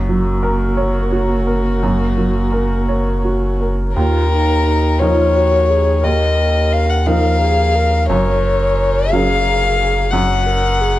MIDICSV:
0, 0, Header, 1, 5, 480
1, 0, Start_track
1, 0, Key_signature, -6, "minor"
1, 0, Tempo, 701754
1, 1244, Time_signature, 6, 3, 24, 8
1, 3654, Tempo, 682594
1, 7627, End_track
2, 0, Start_track
2, 0, Title_t, "Violin"
2, 0, Program_c, 0, 40
2, 0, Note_on_c, 0, 66, 61
2, 2538, Note_off_c, 0, 66, 0
2, 2693, Note_on_c, 0, 70, 87
2, 3412, Note_on_c, 0, 73, 85
2, 3422, Note_off_c, 0, 70, 0
2, 4140, Note_on_c, 0, 75, 76
2, 4150, Note_off_c, 0, 73, 0
2, 4627, Note_on_c, 0, 77, 81
2, 4637, Note_off_c, 0, 75, 0
2, 4746, Note_on_c, 0, 78, 66
2, 4756, Note_off_c, 0, 77, 0
2, 4869, Note_on_c, 0, 77, 93
2, 4879, Note_off_c, 0, 78, 0
2, 5586, Note_off_c, 0, 77, 0
2, 5590, Note_on_c, 0, 73, 82
2, 6298, Note_on_c, 0, 77, 104
2, 6309, Note_off_c, 0, 73, 0
2, 7006, Note_on_c, 0, 78, 82
2, 7017, Note_off_c, 0, 77, 0
2, 7627, Note_off_c, 0, 78, 0
2, 7627, End_track
3, 0, Start_track
3, 0, Title_t, "Viola"
3, 0, Program_c, 1, 41
3, 0, Note_on_c, 1, 58, 58
3, 2539, Note_off_c, 1, 58, 0
3, 2709, Note_on_c, 1, 65, 50
3, 2927, Note_off_c, 1, 65, 0
3, 2951, Note_on_c, 1, 63, 60
3, 3179, Note_off_c, 1, 63, 0
3, 3187, Note_on_c, 1, 63, 53
3, 3422, Note_on_c, 1, 65, 55
3, 3432, Note_off_c, 1, 63, 0
3, 3665, Note_on_c, 1, 66, 59
3, 3676, Note_off_c, 1, 65, 0
3, 3903, Note_on_c, 1, 68, 56
3, 3914, Note_off_c, 1, 66, 0
3, 4140, Note_off_c, 1, 68, 0
3, 4149, Note_on_c, 1, 70, 50
3, 4854, Note_off_c, 1, 70, 0
3, 4871, Note_on_c, 1, 70, 60
3, 5103, Note_off_c, 1, 70, 0
3, 5112, Note_on_c, 1, 68, 57
3, 5348, Note_on_c, 1, 70, 60
3, 5359, Note_off_c, 1, 68, 0
3, 5587, Note_off_c, 1, 70, 0
3, 5598, Note_on_c, 1, 70, 55
3, 6295, Note_off_c, 1, 70, 0
3, 6311, Note_on_c, 1, 68, 62
3, 7007, Note_off_c, 1, 68, 0
3, 7022, Note_on_c, 1, 66, 55
3, 7256, Note_on_c, 1, 70, 63
3, 7266, Note_off_c, 1, 66, 0
3, 7495, Note_on_c, 1, 68, 58
3, 7506, Note_off_c, 1, 70, 0
3, 7627, Note_off_c, 1, 68, 0
3, 7627, End_track
4, 0, Start_track
4, 0, Title_t, "Upright piano"
4, 0, Program_c, 2, 0
4, 0, Control_c, 2, 64, 127
4, 0, Note_on_c, 2, 42, 57
4, 62, Note_on_c, 2, 54, 39
4, 293, Note_on_c, 2, 70, 52
4, 433, Note_off_c, 2, 54, 0
4, 527, Note_on_c, 2, 73, 46
4, 670, Note_off_c, 2, 70, 0
4, 767, Note_on_c, 2, 66, 45
4, 908, Note_off_c, 2, 73, 0
4, 1006, Note_on_c, 2, 70, 42
4, 1149, Note_off_c, 2, 66, 0
4, 1222, Note_off_c, 2, 42, 0
4, 1251, Note_on_c, 2, 42, 49
4, 1259, Control_c, 2, 64, 0
4, 1368, Control_c, 2, 64, 127
4, 1393, Note_off_c, 2, 70, 0
4, 1488, Note_on_c, 2, 54, 34
4, 1724, Note_on_c, 2, 70, 40
4, 1876, Note_off_c, 2, 54, 0
4, 1974, Note_on_c, 2, 73, 35
4, 2114, Note_off_c, 2, 70, 0
4, 2220, Note_on_c, 2, 66, 27
4, 2362, Note_off_c, 2, 73, 0
4, 2467, Note_on_c, 2, 70, 31
4, 2607, Note_off_c, 2, 66, 0
4, 2677, Note_off_c, 2, 42, 0
4, 2705, Note_off_c, 2, 70, 0
4, 2711, Note_on_c, 2, 39, 57
4, 2714, Control_c, 2, 64, 0
4, 2830, Control_c, 2, 64, 127
4, 3400, Note_off_c, 2, 39, 0
4, 3426, Note_on_c, 2, 53, 42
4, 3431, Note_on_c, 2, 63, 43
4, 3433, Note_on_c, 2, 70, 45
4, 4112, Note_off_c, 2, 53, 0
4, 4114, Note_off_c, 2, 63, 0
4, 4115, Note_off_c, 2, 70, 0
4, 4139, Note_on_c, 2, 39, 50
4, 4148, Control_c, 2, 64, 0
4, 4251, Control_c, 2, 64, 127
4, 4842, Note_off_c, 2, 39, 0
4, 4862, Note_on_c, 2, 53, 42
4, 4866, Note_on_c, 2, 63, 42
4, 4869, Note_on_c, 2, 70, 43
4, 5556, Note_off_c, 2, 53, 0
4, 5558, Note_off_c, 2, 63, 0
4, 5560, Note_off_c, 2, 70, 0
4, 5592, Note_on_c, 2, 42, 59
4, 5598, Control_c, 2, 64, 0
4, 5723, Control_c, 2, 64, 127
4, 6285, Note_off_c, 2, 42, 0
4, 6316, Note_on_c, 2, 54, 47
4, 6320, Note_on_c, 2, 61, 43
4, 6320, Note_on_c, 2, 70, 44
4, 6996, Note_off_c, 2, 54, 0
4, 6998, Note_off_c, 2, 61, 0
4, 6998, Note_off_c, 2, 70, 0
4, 7020, Note_on_c, 2, 42, 66
4, 7030, Control_c, 2, 64, 0
4, 7144, Control_c, 2, 64, 127
4, 7627, Note_off_c, 2, 42, 0
4, 7627, End_track
5, 0, Start_track
5, 0, Title_t, "Sub bass"
5, 0, Program_c, 3, 38
5, 0, Note_on_c, 3, 30, 62
5, 2705, Note_off_c, 3, 30, 0
5, 2713, Note_on_c, 3, 39, 70
5, 5586, Note_on_c, 3, 30, 64
5, 5596, Note_off_c, 3, 39, 0
5, 7627, Note_off_c, 3, 30, 0
5, 7627, End_track
0, 0, End_of_file